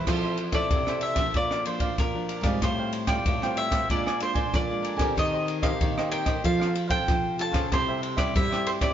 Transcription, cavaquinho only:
0.08 0.22 F4 soft
0.08 0.23 A4 soft
0.08 0.23 C5 soft
0.08 0.22 E5 soft
0.23 0.37 A4 soft
0.23 0.37 C5 medium
0.23 0.38 E5 medium
0.37 muted cavaquinho stroke soft
0.53 0.69 A4 soft
0.53 0.69 C5 medium
0.53 0.69 E5 medium
0.71 0.86 F4 soft
0.71 0.86 A4 soft
0.71 0.86 C5 soft
0.71 0.87 E5 soft
0.88 1.16 A4 medium
0.88 1.15 C5 medium
0.88 1.14 E5 medium
1.15 1.32 A4 medium
1.15 1.32 C5 medium
1.15 1.32 E5 medium
1.34 1.49 D4 soft
1.34 1.49 A#4 soft
1.34 1.50 D5 soft
1.34 1.49 F5 soft
1.51 1.66 A#4 medium
1.51 1.66 D5 medium
1.51 1.65 F5 medium
1.67 muted cavaquinho stroke soft
1.81 2.28 A#4 medium
1.81 2.28 D5 medium
1.81 2.28 F5 medium
2.28 2.44 D4 soft
2.28 2.44 A#4 medium
2.28 2.43 D5 medium
2.28 2.42 F5 medium
2.43 2.60 A#4 medium
2.43 2.60 D5 medium
2.43 2.60 F5 medium
2.62 2.77 A4 soft
2.62 2.77 C5 soft
2.62 2.77 F5 soft
2.62 2.77 G5 medium
2.79 2.92 C5 medium
2.79 2.93 F5 medium
2.79 2.93 G5 medium
2.93 muted cavaquinho stroke soft
3.07 3.24 C5 medium
3.07 3.24 F5 medium
3.07 3.23 G5 medium
3.26 3.41 A4 medium
3.26 3.41 C5 soft
3.26 3.41 F5 medium
3.26 3.42 G5 medium
3.43 3.71 C5 medium
3.43 3.71 F5 medium
3.43 3.70 G5 medium
3.71 3.88 C5 soft
3.71 3.88 F5 medium
3.71 3.87 G5 medium
3.89 4.04 D4 soft
3.89 4.05 A#4 soft
3.89 4.05 D5 soft
3.89 4.05 G#5 medium
4.06 4.20 A#4 medium
4.06 4.20 D5 medium
4.06 4.20 G#5 medium
4.21 muted cavaquinho stroke soft
4.34 4.82 A#4 medium
4.34 4.82 D5 medium
4.34 4.82 G#5 medium
4.82 4.98 D4 medium
4.82 4.98 A#4 soft
4.82 4.97 D5 medium
4.82 4.96 G#5 medium
4.97 5.15 A#4 medium
4.97 5.15 D5 medium
4.97 5.14 G#5 medium
5.16 5.31 D#4 soft
5.16 5.31 G4 soft
5.16 5.31 C5 soft
5.16 5.32 D#5 medium
5.33 5.46 G4 soft
5.33 5.47 C5 medium
5.33 5.47 D#5 medium
5.47 muted cavaquinho stroke soft
5.62 5.79 G4 medium
5.62 5.79 C5 medium
5.62 5.78 D#5 medium
5.81 5.95 D#4 soft
5.81 5.96 G4 medium
5.81 5.96 C5 medium
5.81 5.96 D#5 medium
5.97 6.26 G4 medium
5.97 6.26 C5 medium
5.97 6.25 D#5 medium
6.26 6.43 G4 soft
6.26 6.42 C5 medium
6.26 6.42 D#5 medium
6.44 6.59 F4 soft
6.44 6.60 A4 medium
6.44 6.60 C5 medium
6.44 6.59 F5 medium
6.60 6.73 A4 medium
6.60 6.74 C5 medium
6.60 6.73 F5 medium
6.74 muted cavaquinho stroke soft
6.88 7.37 A4 medium
6.88 7.37 C5 medium
6.88 7.37 F5 medium
7.38 7.54 F4 soft
7.38 7.53 A4 medium
7.38 7.53 C5 medium
7.38 7.52 F5 medium
7.53 7.70 A4 medium
7.53 7.70 C5 medium
7.53 7.69 F5 medium
7.72 7.87 E4 soft
7.72 7.87 G4 medium
7.72 7.87 C5 medium
7.72 7.87 E5 medium
7.88 8.01 G4 medium
7.88 8.01 C5 medium
7.88 8.01 E5 medium
8.02 muted cavaquinho stroke soft
8.17 8.34 G4 medium
8.17 8.33 C5 medium
8.17 8.33 E5 medium
8.35 8.50 E4 soft
8.35 8.50 G4 soft
8.35 8.50 C5 medium
8.35 8.49 E5 soft
8.50 8.82 G4 medium
8.50 8.80 C5 medium
8.50 8.80 E5 medium
8.81 8.94 G4 medium
8.81 8.94 C5 medium
8.81 8.94 E5 medium

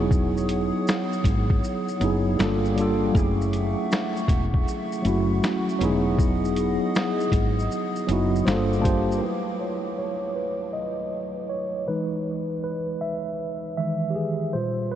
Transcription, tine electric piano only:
0.00 1.19 F#3 loud
0.00 1.20 B3 medium
0.00 1.21 D#4 medium
0.00 1.21 E4 medium
0.00 1.22 G#4 loud
1.99 2.38 F#3 medium
1.99 2.39 B3 medium
1.99 2.39 D#4 medium
2.04 2.40 E4 medium
2.04 2.41 G#4 medium
2.36 2.74 G3 loud
2.36 2.74 A#3 medium
2.36 2.75 D4 medium
2.41 2.76 F4 medium
2.41 2.77 A4 medium
2.76 3.12 G3 medium
2.76 3.13 A#3 medium
2.76 3.14 D4 medium
2.80 3.15 F4 medium
2.80 3.15 A4 loud
3.12 4.58 F#3 medium
3.12 4.59 A3 medium
3.12 4.60 C#4 medium
3.16 4.61 E4 medium
3.16 4.61 G#4 medium
5.02 5.76 F#3 medium
5.02 5.77 A3 medium
5.02 5.78 C#4 medium
5.07 5.78 E4 medium
5.07 5.79 F#4 medium
5.79 7.25 F#3 loud
5.79 7.26 B3 loud
5.79 7.26 D#4 medium
5.83 7.27 E4 medium
5.83 7.28 G#4 loud
8.07 8.46 F#3 medium
8.07 8.46 B3 medium
8.07 8.47 D#4 medium
8.07 8.47 G#4 medium
8.11 8.48 E4 medium
8.11 8.48 F#4 loud
8.45 8.78 G3 medium
8.45 8.79 A#3 medium
8.45 8.80 D4 medium
8.45 8.83 C5 medium
8.45 8.83 F5 medium
8.49 8.82 F4 medium
8.49 8.85 A4 medium
8.79 9.18 G3 medium
8.79 9.19 A#3 medium
8.79 9.19 D4 medium
8.79 9.18 A5 medium
8.83 9.20 F4 medium
8.83 9.21 G4 loud
8.83 9.15 C5 medium
9.17 9.22 A#4 medium
9.22 11.84 F#3 soft
9.22 11.85 A3 soft
9.22 11.85 E4 medium
9.22 9.61 B4 medium
9.60 9.97 C#5 medium
9.98 10.33 C#5 medium
10.36 10.75 B4 medium
10.73 11.52 D#5 medium
11.49 11.85 C#5 medium
11.88 12.98 E3 medium
11.88 12.98 G#3 soft
11.88 12.98 D#4 medium
11.88 12.62 B4 medium
12.64 12.99 B4 medium
13.01 13.73 E5 medium
13.77 14.12 D#3 medium
13.77 14.12 E3 soft
13.77 14.12 G#3 soft
13.77 14.12 E5 medium
14.10 14.15 G4 medium
14.15 14.55 G#4 medium
14.53 14.95 A#2 soft
14.53 14.95 G3 soft
14.53 14.95 F4 soft
14.53 14.93 C5 medium
14.92 14.95 B4 medium

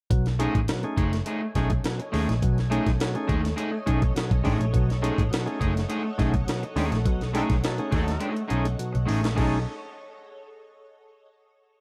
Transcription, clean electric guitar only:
0.39 0.59 A3 medium
0.39 0.59 D#4 loud
0.39 0.59 G#4 loud
0.84 muted clean electric guitar stroke soft
0.97 1.16 A3 medium
0.97 1.13 D#4 medium
0.97 1.12 G#4 medium
1.13 muted clean electric guitar stroke soft
1.26 1.46 A3 medium
1.26 1.42 D#4 medium
1.26 1.41 G#4 medium
1.42 muted clean electric guitar stroke soft
1.55 1.71 A3 medium
1.55 1.69 D#4 medium
1.55 1.69 G#4 medium
1.70 muted clean electric guitar stroke soft
1.99 muted clean electric guitar stroke medium
2.12 2.32 A3 medium
2.12 2.28 D#4 medium
2.12 2.28 G#4 medium
2.29 muted clean electric guitar stroke soft
2.70 2.90 A3 medium
2.70 2.90 D#4 medium
2.70 2.91 G#4 medium
3.14 muted clean electric guitar stroke soft
3.27 3.48 A3 medium
3.27 3.43 D#4 medium
3.27 3.42 G#4 medium
3.43 muted clean electric guitar stroke soft
3.56 3.76 A3 medium
3.56 3.72 D#4 medium
3.56 3.71 G#4 medium
3.72 muted clean electric guitar stroke soft
3.86 4.02 A3 medium
3.86 4.02 D#4 medium
3.86 4.01 G#4 medium
4.02 muted clean electric guitar stroke medium
4.30 muted clean electric guitar stroke soft
4.44 4.65 A3 medium
4.44 4.59 D#4 medium
4.44 4.58 G#4 medium
4.59 muted clean electric guitar stroke soft
5.02 5.22 A3 medium
5.02 5.22 D#4 loud
5.02 5.22 G#4 loud
5.46 muted clean electric guitar stroke soft
5.60 5.80 A3 medium
5.60 5.75 D#4 medium
5.60 5.74 G#4 medium
5.75 muted clean electric guitar stroke soft
5.89 6.09 A3 medium
5.89 6.04 D#4 medium
5.89 6.03 G#4 medium
6.04 muted clean electric guitar stroke soft
6.18 6.34 A3 medium
6.18 6.33 D#4 medium
6.18 6.32 G#4 medium
6.33 muted clean electric guitar stroke soft
6.63 muted clean electric guitar stroke medium
6.76 6.97 A3 medium
6.76 6.92 D#4 medium
6.76 6.90 G#4 medium
6.92 muted clean electric guitar stroke soft
7.33 7.55 A3 medium
7.33 7.55 D#4 medium
7.33 7.55 G#4 medium
7.77 muted clean electric guitar stroke soft
7.91 8.11 A3 medium
7.91 8.06 D#4 medium
7.91 8.05 G#4 medium
8.06 muted clean electric guitar stroke soft
8.20 8.41 A3 medium
8.20 8.34 D#4 medium
8.20 8.34 G#4 medium
8.35 muted clean electric guitar stroke soft
8.48 8.65 A3 medium
8.48 8.64 D#4 medium
8.48 8.63 G#4 medium
8.64 muted clean electric guitar stroke soft
8.93 muted clean electric guitar stroke medium
9.06 9.27 A3 medium
9.06 9.21 D#4 medium
9.06 9.20 G#4 medium
9.21 muted clean electric guitar stroke soft
9.35 9.55 A3 medium
9.35 9.55 D#4 medium
9.35 9.55 G#4 loud

